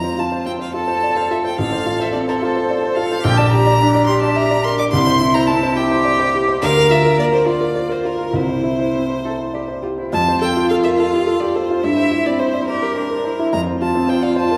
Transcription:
Already playing: F2 F4 A#5
0.04 C5
0.18 F4 A5
0.32 C5
0.46 C4 G5
0.59 C5 F5
0.73 F4 A4 A5
0.88 C5
1.03 D5
1.16 C5 F5
1.31 F4 E5
1.45 C5 G5
1.58 A1 A4 F5
1.72 C5
1.86 F4
2.00 C5 E5
2.12 C4 D5
2.28 A#4 C5
2.41 F4 C5
2.57 C5
2.70 D5
2.83 C5
2.96 F4 F5
3.11 C5
3.24 A#1 G4 G5
3.37 D5 A5
3.51 G4 A#5
3.66 D5
3.81 D4
3.95 D5
4.06 G4 C6
4.22 D5 A5
4.36 E5 A#5
4.51 D5
4.64 A#4 C6
4.79 D5 D6
4.91 C2 E4 C6
5.07 C5
5.20 E4
5.34 C5 A#5
5.47 C4 A5
5.63 C5
5.76 E4 G4 G5
5.91 C5
6.05 D5
6.19 C5
6.34 G4
6.48 C5
6.62 D2 A#4 F5
6.77 A#4
6.90 F4 E5
7.05 A#4
7.18 A#3 D5
7.33 A#4 C5
7.46 F4 D5
7.61 A#4
7.75 C5
7.89 A#4 C5
8.05 F4 A#4
8.19 A#4
8.33 C2 E4 C5
8.49 C5
8.63 E4
8.79 C5
8.95 C4
9.10 C5
9.24 E4 A4
9.39 C5
9.54 G4 D5
9.68 C5
9.82 F4 G4
9.98 E4 C5
10.12 F2 F4 A5
10.28 C5
10.41 A4 G5
10.57 F4
10.69 A4 F5
10.83 A#4 E5
10.97 A4 F5
11.14 G4
11.27 A4
11.40 G4 D5
11.55 A4 C5
11.71 F4
11.83 G2 E4 E5
11.97 C5
12.11 E4
12.26 C4 D5
12.39 C5
12.54 D5
12.66 G4 A#4 C5
12.82 A#4
12.96 D4 C5
13.11 A#4
13.25 E4 C5
13.39 E4
13.53 F2 F4 A#5
13.67 C5
13.82 F4 A5
13.95 C4
14.09 C5 G5
14.23 D5 F5
14.36 C5 A5
14.51 A#4

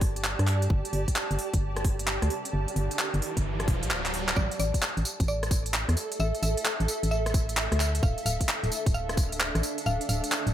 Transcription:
Already playing: G1 G4 D5 A5
0.01 kick, open hi-hat
0.16 closed hi-hat
0.24 clap
0.39 G2, cross-stick, closed hi-hat
0.47 clap, open hi-hat
0.62 closed hi-hat
0.70 G1, kick, riser
0.85 closed hi-hat
0.93 G1, open hi-hat
1.08 kick, closed hi-hat
1.16 clap
1.31 G1, closed hi-hat
1.39 open hi-hat
1.54 G1, kick, closed hi-hat
1.76 cross-stick, closed hi-hat
1.84 kick, open hi-hat
1.99 closed hi-hat
2.07 clap
2.22 D2, cross-stick, closed hi-hat
2.30 open hi-hat
2.45 closed hi-hat
2.53 G1
2.68 closed hi-hat
2.76 G1, open hi-hat
2.91 closed hi-hat
2.99 clap
3.14 G1, closed hi-hat
3.22 open hi-hat
3.37 G1, kick, closed hi-hat
3.60 cross-stick, closed hi-hat
3.68 E1, kick, open hi-hat
3.83 A#1, closed hi-hat
3.91 D1, clap
4.06 clap, closed hi-hat
4.14 open hi-hat
4.29 clap, closed hi-hat
4.36 A1 A4 D5, kick, tambourine
4.51 closed hi-hat, tambourine
4.59 A1 D5, open hi-hat, tambourine
4.74 E5, kick, closed hi-hat, tambourine
4.82 clap, tambourine
4.97 A1, closed hi-hat, tambourine
5.05 open hi-hat, tambourine
5.20 A1, kick, closed hi-hat, tambourine
5.28 D5, tambourine
5.43 cross-stick, closed hi-hat, tambourine
5.51 kick, open hi-hat, tambourine
5.66 closed hi-hat, tambourine
5.74 clap, tambourine
5.89 E2, cross-stick, closed hi-hat, tambourine
5.97 open hi-hat, tambourine
6.12 closed hi-hat, tambourine
6.20 A1 E5, tambourine
6.35 closed hi-hat, tambourine
6.43 A1 E5, open hi-hat, tambourine
6.57 closed hi-hat, tambourine
6.65 clap, tambourine
6.80 A1, closed hi-hat, tambourine
6.88 open hi-hat, tambourine
7.03 A1, closed hi-hat, tambourine
7.11 E5, tambourine
7.26 cross-stick, closed hi-hat, tambourine
7.34 kick, open hi-hat, tambourine
7.49 closed hi-hat, tambourine
7.57 clap, tambourine
7.72 D2, cross-stick, closed hi-hat, tambourine
7.80 D4, clap, open hi-hat, tambourine
7.95 closed hi-hat, tambourine
8.03 D1 F5, kick, tambourine
8.18 closed hi-hat, tambourine
8.26 D1 F5, open hi-hat, tambourine
8.41 kick, closed hi-hat, tambourine
8.49 clap, tambourine
8.63 D1, closed hi-hat, tambourine
8.72 open hi-hat, tambourine
8.86 D1, kick, closed hi-hat, tambourine
8.94 F5, tambourine
9.09 cross-stick, closed hi-hat, tambourine
9.17 kick, open hi-hat, tambourine
9.32 closed hi-hat, tambourine
9.40 clap, tambourine
9.55 A1, cross-stick, closed hi-hat, tambourine
9.63 open hi-hat, tambourine
9.78 closed hi-hat, tambourine
9.86 D1 F5, tambourine
10.01 closed hi-hat, tambourine
10.09 D1 F5, open hi-hat, tambourine
10.24 closed hi-hat, tambourine
10.32 clap, tambourine
10.47 D1, closed hi-hat, tambourine

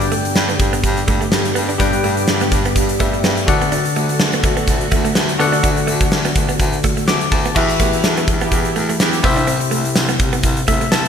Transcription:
Already playing: G2 D3 B3 G4 B4 D5 G5
0.01 muted clean electric guitar stroke, closed hi-hat, shaker
0.12 A3, closed hi-hat
0.25 closed hi-hat, shaker
0.35 G2, snare, shaker
0.49 B3, closed hi-hat, shaker
0.59 G2, muted clean electric guitar stroke, kick, closed hi-hat, shaker
0.73 B3, closed hi-hat, shaker
0.84 G2, muted clean electric guitar stroke, kick, closed hi-hat, shaker
0.97 closed hi-hat, shaker
1.08 G2 A3, kick, closed hi-hat
1.21 A3, closed hi-hat, shaker
1.32 G2, muted clean electric guitar stroke, snare, shaker
1.45 closed hi-hat, shaker
1.55 G2 B3, closed hi-hat
1.69 D4, closed hi-hat, shaker
1.78 G2 G3 G4 B4 D5 G5, kick, closed hi-hat, shaker
1.93 muted clean electric guitar stroke, closed hi-hat, shaker
2.04 G2 A3, closed hi-hat
2.17 closed hi-hat, shaker
2.27 G2, snare, shaker
2.41 B3, closed hi-hat, shaker
2.52 G2, muted clean electric guitar stroke, kick, closed hi-hat, shaker
2.65 B3, closed hi-hat, shaker
2.76 G2, muted clean electric guitar stroke, kick, closed hi-hat, shaker
2.89 closed hi-hat, shaker
2.99 G2 A3 G4 B4 D5 E5, kick, closed hi-hat
3.13 A3, closed hi-hat, shaker
3.24 G2 B3, snare, shaker
3.37 closed hi-hat, shaker
3.46 D2 D3 A3 F#4 A4 D5 F#5, muted clean electric guitar stroke, kick, closed hi-hat
3.61 B3, closed hi-hat, shaker
3.72 D4, closed hi-hat, shaker
3.85 muted clean electric guitar stroke, closed hi-hat, shaker
3.96 D2 A3, closed hi-hat
4.09 closed hi-hat, shaker
4.20 D2, snare, shaker
4.33 B3, closed hi-hat, shaker
4.43 D2, muted clean electric guitar stroke, kick, closed hi-hat, shaker
4.57 B3, closed hi-hat, shaker
4.68 D2, muted clean electric guitar stroke, kick, closed hi-hat, shaker
4.81 closed hi-hat, shaker
4.91 D2 A3, kick, closed hi-hat
5.05 A3, closed hi-hat, shaker
5.15 D2, muted clean electric guitar stroke, snare, shaker
5.29 closed hi-hat, shaker
5.39 D2 D3 B3 F#4 A4 D5 F#5, closed hi-hat
5.52 D4, closed hi-hat, shaker
5.63 D2 D4, kick, closed hi-hat, shaker
5.76 muted clean electric guitar stroke, closed hi-hat, shaker
5.87 D2 A3, closed hi-hat, shaker
6.00 kick, closed hi-hat, shaker
6.11 D2, snare, shaker
6.24 B3, closed hi-hat, shaker
6.35 D2, muted clean electric guitar stroke, kick, closed hi-hat, shaker
6.49 B3, closed hi-hat, shaker
6.59 D2, muted clean electric guitar stroke, kick, closed hi-hat, shaker
6.73 closed hi-hat, shaker
6.83 A3, kick, closed hi-hat, shaker
6.97 A3, closed hi-hat, shaker
7.08 D2 B3 D6, snare, shaker
7.20 closed hi-hat, shaker
7.31 D2 A5, muted clean electric guitar stroke, kick, open hi-hat, shaker
7.45 B3, closed hi-hat, shaker
7.55 E2 E3 E4 F#4 G4 B4 E5, kick, crash, shaker
7.69 muted clean electric guitar stroke, closed hi-hat, shaker
7.80 E2 A3 B3 E4 G4, kick, closed hi-hat, shaker
7.93 B3 E4 G4, closed hi-hat, shaker
8.03 E2 D4 F#4 A4, snare, tambourine, shaker
8.17 B3 G4 B4, closed hi-hat, shaker
8.28 E2, muted clean electric guitar stroke, kick, closed hi-hat
8.41 B3 E4 G4, closed hi-hat, shaker
8.52 E2, muted clean electric guitar stroke, kick, closed hi-hat, shaker
8.65 closed hi-hat, shaker
8.76 E2 A3, closed hi-hat
8.89 A3, closed hi-hat, shaker
9.00 E2 B3 E4 G4, muted clean electric guitar stroke, snare, tambourine, shaker
9.12 closed hi-hat, shaker
9.22 C2 C3 B3 E4 G4 C5 E5, kick, open hi-hat, shaker
9.37 D4, closed hi-hat, shaker
9.47 C4, closed hi-hat, shaker
9.60 muted clean electric guitar stroke, closed hi-hat, shaker
9.71 C2 A3, closed hi-hat, shaker
9.85 closed hi-hat, shaker
9.95 C2, snare, tambourine, shaker
10.09 B3, closed hi-hat, shaker
10.19 C2, muted clean electric guitar stroke, kick, closed hi-hat
10.33 B3, closed hi-hat, shaker
10.43 C2, muted clean electric guitar stroke, kick, closed hi-hat, shaker
10.57 closed hi-hat, shaker
10.68 C2 A3 E5, kick, closed hi-hat
10.81 A3, closed hi-hat, shaker
10.92 C2 B3 A5, snare, tambourine, shaker

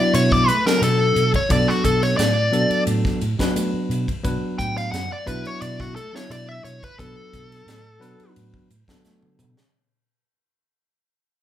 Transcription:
Already playing: F#3 B3 D4 E4 D5
0.14 B2 C#5, hi-hat pedal, ride
0.32 D5, kick, snare
0.48 A3 B4, hi-hat pedal, ride
0.66 F#3 B3 D4 A4 A#4, snare
0.81 B2 A4, hi-hat pedal, ride
1.16 B2, hi-hat pedal, ride
1.34 C#5, kick, ride
1.49 B2 F#3 B3 D4 A4 D5, kick, hi-hat pedal, ride
1.68 F#4, snare
1.85 B2 A4, kick, hi-hat pedal, ride
2.03 C#5, snare, ride
2.17 A2 D5, snare, hi-hat pedal, ride
2.52 B2 F#3 B3 D4 A4, hi-hat pedal, ride
2.70 muted fretless electric bass stroke, ride
2.87 A2, hi-hat pedal, ride
3.05 kick, snare
3.21 A2, hi-hat pedal, ride
3.39 F#3 B3 D4 B4, kick, snare
3.56 A3, hi-hat pedal, ride
3.73 muted fretless electric bass stroke
3.89 B2, hi-hat pedal, ride
4.08 kick, ride
4.24 B2 F#3 B3 D4 B4, kick, hi-hat pedal, ride
4.41 muted fretless electric bass stroke
4.58 A2 G5, kick, hi-hat pedal, ride
4.77 F5, snare, ride
4.92 F#2 F#5, snare, hi-hat pedal, ride
5.10 D5, muted fretless electric bass stroke
5.26 B2 F#3 B3 D4 E4 B4, kick, hi-hat pedal, ride
5.45 C#5, ride
5.61 B2 D5, hi-hat pedal, ride
5.80 F#4, kick, snare
5.96 A3 A4, hi-hat pedal, ride
6.13 F#3 B3 D4 E4 C#5, snare
6.30 B2 D5, hi-hat pedal, ride
6.49 E5
6.64 B2 C#5, hi-hat pedal, ride
6.83 B4, kick, ride
6.98 B2 F#3 B3 D4 A4 B4, kick, hi-hat pedal, ride
7.33 B2, kick, hi-hat pedal, ride
7.52 snare, ride
7.66 A2, snare, hi-hat pedal, ride
8.00 B2 F#3 B3 D4 B4, snare, hi-hat pedal, ride
8.20 muted fretless electric bass stroke, ride
8.36 A2, hi-hat pedal, ride
8.54 kick
8.70 A2, hi-hat pedal, ride
8.88 F#3 B3 D4 A4, kick, snare
9.04 A3, snare, hi-hat pedal
9.22 muted fretless electric bass stroke, mid tom
9.39 B2, hi-hat pedal, mid tom
9.57 snare

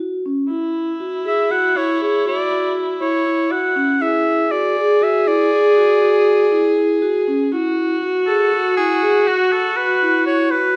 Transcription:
0.00 F#4
0.26 C#4
0.50 E4
1.00 F#4
1.25 G#4 E5
1.50 F#4 F#5
1.76 E4 C#5
2.01 G#4 C#5
2.25 F#4 D5
2.51 F#4
3.01 E4 C#5
3.26 E4
3.51 F#4 F#5
3.76 C#4
4.01 E4 G#4 E5
4.51 F#4 D5
4.76 G#4
5.01 F#4 E5
5.26 E4 D5
5.52 G#4
5.77 F#4
6.02 F#4
6.52 E4
6.77 E4
7.02 F#4
7.28 C#4
7.52 E4 F#4
8.03 F#4
8.27 G#4 A4
8.52 F#4
8.77 E4 G#4
9.03 G#4
9.28 F#4
9.52 F#4 A4
9.77 B4
10.02 E4
10.26 E4 C#5
10.51 F#4 B4

